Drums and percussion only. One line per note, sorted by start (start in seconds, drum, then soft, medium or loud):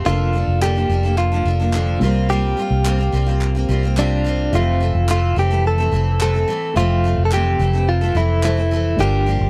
0.62 clap medium
1.18 clap medium
1.73 clap medium
2.85 clap medium
3.41 clap medium
3.97 clap medium
5.09 clap medium
6.21 clap medium
7.31 clap medium
8.43 clap medium